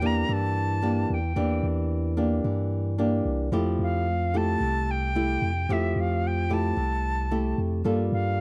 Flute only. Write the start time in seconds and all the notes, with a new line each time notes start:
0.06 A#5
0.33 A5
1.14 G5
3.83 F5
4.37 A5
4.91 G5
5.72 E5
6.01 F5
6.27 G5
6.53 A5
8.13 F5